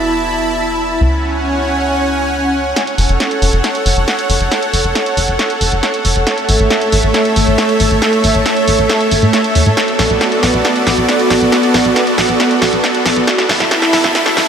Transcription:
Already playing: E1 E4 E5 A5 B5
1.01 C#2 C#4 C#5 F#5 G#5
2.76 A4 C#5 F#5, snare, closed hi-hat
2.87 closed hi-hat
2.98 F#1, open hi-hat
3.09 F#1, closed hi-hat
3.20 snare, closed hi-hat
3.31 closed hi-hat
3.42 F#1, open hi-hat
3.53 F#1, closed hi-hat
3.64 snare, closed hi-hat
3.75 closed hi-hat
3.86 F#1, open hi-hat
3.97 F#1, closed hi-hat
4.08 snare, closed hi-hat
4.19 closed hi-hat
4.30 F#1, open hi-hat
4.41 F#1, closed hi-hat
4.52 snare, closed hi-hat
4.63 closed hi-hat
4.73 F#1, open hi-hat
4.84 F#1, closed hi-hat
4.95 snare, closed hi-hat
5.06 closed hi-hat
5.17 F#1, open hi-hat
5.28 F#1, closed hi-hat
5.39 snare, closed hi-hat
5.50 closed hi-hat
5.61 F#1, open hi-hat
5.72 F#1, closed hi-hat
5.83 snare, closed hi-hat
5.94 closed hi-hat
6.05 F#1, open hi-hat
6.16 F#1, closed hi-hat
6.27 A3 C#5 E5, snare, closed hi-hat
6.38 closed hi-hat
6.49 A1, open hi-hat
6.60 A1, closed hi-hat
6.70 snare, closed hi-hat
6.81 closed hi-hat
6.92 A1, open hi-hat
7.03 A1, closed hi-hat
7.14 snare, closed hi-hat
7.25 closed hi-hat
7.36 A1, open hi-hat
7.47 A1, closed hi-hat
7.58 snare, closed hi-hat
7.69 closed hi-hat
7.80 A1, open hi-hat
7.91 A1, closed hi-hat
8.02 snare, closed hi-hat
8.13 closed hi-hat
8.24 A1, open hi-hat
8.35 A1, closed hi-hat
8.46 snare, closed hi-hat
8.57 closed hi-hat
8.68 A1, open hi-hat
8.79 A1, closed hi-hat
8.90 snare, closed hi-hat
9.01 closed hi-hat
9.11 A1, open hi-hat
9.22 A2, closed hi-hat
9.33 snare, closed hi-hat
9.44 closed hi-hat
9.55 E2, open hi-hat
9.66 A2, closed hi-hat
9.77 B3 F#4 D5, snare, closed hi-hat
9.88 closed hi-hat
9.99 B1, snare, open hi-hat
10.10 B1, closed hi-hat
10.21 snare, closed hi-hat
10.32 closed hi-hat
10.43 B1, snare, open hi-hat
10.54 B1, closed hi-hat
10.65 snare, closed hi-hat
10.76 closed hi-hat
10.87 B1, snare, open hi-hat
10.98 B1, closed hi-hat
11.09 snare, closed hi-hat
11.20 closed hi-hat
11.30 B1, snare, open hi-hat
11.41 B1, closed hi-hat
11.52 snare, closed hi-hat
11.63 closed hi-hat
11.74 B1, snare, open hi-hat
11.85 B1, closed hi-hat
11.96 snare, closed hi-hat
12.07 closed hi-hat
12.18 B1, snare, open hi-hat
12.29 B1, closed hi-hat
12.40 snare, closed hi-hat
12.51 closed hi-hat
12.62 B1, snare, open hi-hat
12.73 B1, closed hi-hat
12.84 snare, closed hi-hat
12.95 closed hi-hat
13.06 B1, snare, open hi-hat
13.16 B1, closed hi-hat
13.27 E4 E5 A5 B5, snare, closed hi-hat
13.38 snare, closed hi-hat
13.49 E1, snare, open hi-hat
13.60 E1, snare
13.71 snare, closed hi-hat
13.82 snare, closed hi-hat
13.93 E1, snare, open hi-hat
14.04 E1, snare
14.15 snare, closed hi-hat
14.26 snare, closed hi-hat
14.37 E1, snare, open hi-hat

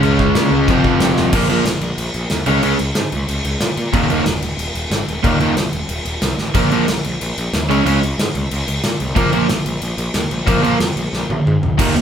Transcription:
Already playing: C#3 G#3 C#4
0.03 C#2, crash
0.19 C#2, kick
0.35 A#2, snare, crash
0.51 C#2
0.67 F1 F2 C3 F3, kick, crash
0.84 F2, kick
1.00 F1, snare, crash
1.16 D#1, snare
1.33 A#1 A#2 F3 A#3, kick, crash
1.49 A#1 A#2 F3 A#3, crash
1.64 A#1, snare, crash
1.81 A#1, crash
1.98 A#1, crash
2.14 A#1, crash
2.30 D#2, snare, crash
2.46 C#2 C#3 G#3 C#4, crash
2.63 C#2 C#3 G#3 C#4, crash
2.79 C#2, crash
2.95 G#2, snare, crash
3.12 C#2, crash
3.28 C#2, crash
3.44 C#2, crash
3.60 A#2, snare, crash
3.77 A#2, crash
3.93 D#1 D#2 A#2 D#3, kick, crash
4.09 D#1 D#2 A#2 D#3, crash
4.26 D#1, snare, crash
4.42 D#1, crash
4.58 D#1, crash
4.75 D#1, crash
4.91 G#1, snare, crash
5.08 D#1, crash
5.24 D#1 D#2 A#2 D#3, kick, crash
5.40 D#1 D#2 A#2 D#3, crash
5.56 A#1, snare, crash
5.72 D#1, crash
5.89 D#1, crash
6.05 D#1, crash
6.22 C2, snare, crash
6.38 A1, snare
6.54 A#1 A#2 F3 A#3, kick, crash
6.71 A#1 A#2 F3 A#3, crash
6.88 A#1, snare, crash
7.04 A#1, crash
7.21 A#1, crash
7.38 A#1, crash
7.53 D#2, snare, crash
7.69 C#2 C#3 G#3 C#4, crash
7.86 C#2 C#3 G#3 C#4, crash
8.02 C#2, crash
8.18 G#2, snare, crash
8.35 C#2, crash
8.51 C#2, crash
8.68 C#2, crash
8.83 A#2, snare, crash
9.00 C2, crash
9.15 A#1 A#2 F3 A#3, kick, crash
9.32 A#1 A#2 F3 A#3, crash
9.49 A#1, snare, crash
9.66 A#1, crash
9.82 A#1, crash
9.98 A#1, crash
10.14 D#2, snare, crash
10.31 A#1, crash
10.46 A#1 A#2 F3 A#3, kick, crash
10.62 A#1 A#2 F3 A#3, crash
10.80 F2, snare, crash
10.96 A#1, crash
11.13 A#1, snare
11.30 A#1, high tom
11.46 G#2, mid tom
11.62 F1, floor tom
11.78 D#1 D#2 A#2 D#3, kick, crash
11.95 D#2 A#2, crash

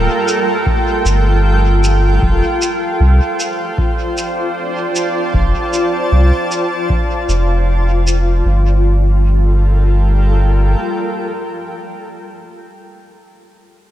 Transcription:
Already playing: G3 F4 A4 A#4 G5
0.28 shaker
0.66 kick
1.05 G1, shaker
1.84 shaker
2.22 F1, kick
2.44 C5
2.62 shaker
2.94 D5
3.00 C2
3.35 A5
3.39 shaker
3.78 kick
4.17 shaker
4.95 shaker
5.34 F1, kick
5.73 shaker
6.12 C2
6.51 shaker
6.90 kick
7.29 F1, shaker
8.07 shaker
8.46 G1 G3
8.59 F4
8.71 A4
8.81 A#4
8.94 G5

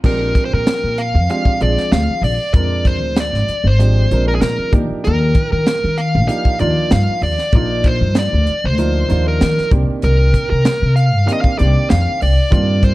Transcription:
0.04 A#1 F3 G#3 C4 D4 G4 A#4, kick, crash
0.35 kick, closed hi-hat
0.45 C5
0.53 A#2 A#4
0.67 snare, closed hi-hat
0.84 A#2
0.98 F5, closed hi-hat
1.14 F2
1.29 F3 G#3 C4 D4 G4 F5, closed hi-hat
1.45 muted upright bass stroke, kick
1.60 A#1 F3 G#3 C4 D4 G#4 D5, closed hi-hat
1.78 snare
1.92 D2 F5, snare, closed hi-hat
2.08 muted upright bass stroke
2.22 A#1 D5, open hi-hat
2.54 F2 F3 G#3 C4 D4 A#4 D5, kick, closed hi-hat
2.85 C5, kick, closed hi-hat
3.01 D2
3.16 D5, snare, closed hi-hat
3.33 G#1, snare
3.48 muted upright bass stroke, closed hi-hat
3.64 G#1 C5
3.79 F3 G#3 C4 D4 G4, closed hi-hat
4.11 A#1 F3 G#3 C4 D4 A#4, closed hi-hat
4.28 A#4
4.35 G#4
4.41 A#2 A#4, snare, closed hi-hat
4.59 muted upright bass stroke
4.71 D#2 F3 A#3 D4 D#4 G4, kick, closed hi-hat
4.90 muted upright bass stroke
5.04 D#2 A#4, closed hi-hat
5.35 kick, closed hi-hat
5.52 D#3 A#4
5.66 snare, closed hi-hat
5.84 D#3
5.98 F5, closed hi-hat
6.15 A#1
6.27 F3 A#3 D4 D#4 G4 F5, closed hi-hat
6.45 muted upright bass stroke, kick
6.59 D#2 F3 A#3 D4 D#4 F4 D5, closed hi-hat
6.91 G2 F5, snare, closed hi-hat
7.08 muted upright bass stroke
7.22 D#2 D5, open hi-hat
7.39 snare
7.52 A#1 F3 A#3 D4 D#4 F4 D5, kick, closed hi-hat
7.84 C5, kick, closed hi-hat
8.01 G2
8.15 D5, snare, closed hi-hat
8.33 D2
8.47 muted upright bass stroke, closed hi-hat
8.64 D2 C5
8.78 F3 A#3 D4 D#4 F4, closed hi-hat
9.08 D#2 F3 A#3 D4 D#4 F4, closed hi-hat
9.28 A#4
9.41 D#3, snare, closed hi-hat
9.58 muted upright bass stroke, snare
9.71 C2 D#3 A#3 C4 D4 G4, kick, closed hi-hat
9.90 muted upright bass stroke
10.02 C2 A#4, closed hi-hat
10.34 kick, closed hi-hat
10.50 C3 A#4
10.65 snare, closed hi-hat
10.82 C3
10.96 F5, closed hi-hat
11.14 G2
11.26 D#3 A#3 C4 D4 G4 F5, closed hi-hat
11.33 D#5
11.41 F5, muted upright bass stroke, kick
11.57 C2 D#3 A#3 C4 D4 G4 D5, closed hi-hat
11.90 F2 F5, snare, closed hi-hat
12.09 muted upright bass stroke
12.21 C2 D5, open hi-hat
12.50 G2 D#3 A#3 C4 D4 F4 D5, kick, closed hi-hat
12.83 C5, kick, closed hi-hat

